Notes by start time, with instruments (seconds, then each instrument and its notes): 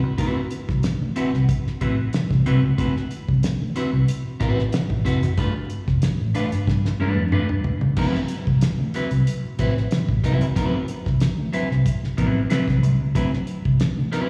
0.03 fingered electric bass C#2
0.18 fingered electric bass D2, clean electric guitar C4 E4 F#4 B4, kick, closed hi-hat
0.51 closed hi-hat
0.68 fingered electric bass C2, kick, snare
0.83 muted fingered electric bass stroke, snare, closed hi-hat
1.01 fingered electric bass D2
1.16 clean electric guitar C4 E4 F#4 B4, closed hi-hat
1.33 fingered electric bass C2, snare
1.49 kick, closed hi-hat
1.66 muted fingered electric bass stroke, snare
1.81 fingered electric bass A1, clean electric guitar C4 E4 F#4 B4, kick, closed hi-hat
2.13 snare, closed hi-hat
2.31 fingered electric bass C2, kick, snare
2.46 fingered electric bass C2, clean electric guitar C4 E4 F#4 B4, closed hi-hat
2.63 fingered electric bass C#2
2.78 fingered electric bass D2, clean electric guitar C4 E4 F#4 B4, kick, closed hi-hat
2.97 snare
3.11 closed hi-hat
3.28 fingered electric bass C2, kick
3.43 muted fingered electric bass stroke, snare, closed hi-hat
3.60 fingered electric bass D2
3.76 clean electric guitar C4 E4 F#4 B4, snare, closed hi-hat
3.93 fingered electric bass C2
4.08 closed hi-hat
4.25 muted fingered electric bass stroke
4.40 fingered electric bass A1, clean electric guitar C4 E4 F#4 B4, kick, closed hi-hat
4.59 snare
4.73 snare, closed hi-hat
4.90 fingered electric bass A1, kick
5.05 fingered electric bass F1, clean electric guitar C4 E4 F#4 B4, kick, closed hi-hat
5.22 fingered electric bass F#1, snare, closed hi-hat
5.37 fingered electric bass G1, clean electric guitar A3 D4 F4 B4, kick, closed hi-hat
5.70 closed hi-hat
5.88 fingered electric bass F1, kick, snare
6.02 muted fingered electric bass stroke, snare, closed hi-hat
6.20 fingered electric bass A1
6.34 clean electric guitar A3 D4 F4 B4, closed hi-hat
6.52 fingered electric bass G1, snare, closed hi-hat
6.67 fingered electric bass G2, kick, snare
6.85 snare
7.00 fingered electric bass G2, clean electric guitar A3 D4 F4 B4
7.17 fingered electric bass F2
7.32 clean electric guitar A3 D4 F4 B4, mid tom
7.49 fingered electric bass G2, mid tom
7.64 floor tom
7.81 fingered electric bass C#2, floor tom
7.96 fingered electric bass D2, clean electric guitar F#3 C4 E4 B4, kick, crash
8.15 snare
8.28 closed hi-hat
8.47 fingered electric bass C2, kick
8.61 muted fingered electric bass stroke, snare, closed hi-hat
8.78 fingered electric bass D2
8.94 clean electric guitar F#3 C4 E4 B4, snare, closed hi-hat
9.11 fingered electric bass C2, closed hi-hat
9.27 closed hi-hat
9.44 muted fingered electric bass stroke
9.59 fingered electric bass A1, clean electric guitar F#3 C4 E4 B4, kick, closed hi-hat
9.77 snare
9.91 snare, closed hi-hat
10.09 fingered electric bass A1, kick
10.24 fingered electric bass C2, clean electric guitar F#3 C4 E4 B4, kick, closed hi-hat
10.41 fingered electric bass C#2, closed hi-hat
10.56 fingered electric bass D2, clean electric guitar F#3 C4 E4 B4, kick, closed hi-hat
10.88 closed hi-hat
11.06 fingered electric bass C2, kick, snare
11.20 muted fingered electric bass stroke, snare, closed hi-hat
11.38 fingered electric bass D2
11.53 clean electric guitar F#3 C4 E4 B4, closed hi-hat
11.71 fingered electric bass C2, snare
11.86 kick, closed hi-hat
12.03 muted fingered electric bass stroke, snare
12.17 fingered electric bass A1, clean electric guitar F#3 C4 E4 B4, kick, closed hi-hat
12.50 clean electric guitar F#3 C4 E4 B4, snare, closed hi-hat
12.67 fingered electric bass C2, kick, snare
12.83 fingered electric bass C2, closed hi-hat
13.00 fingered electric bass C#2
13.15 fingered electric bass D2, clean electric guitar F#3 C4 E4 B4, kick, closed hi-hat
13.33 snare
13.47 closed hi-hat
13.65 fingered electric bass C2, kick
13.80 snare, closed hi-hat
13.97 fingered electric bass D2
14.12 clean electric guitar F#3 C4 E4 B4, snare, closed hi-hat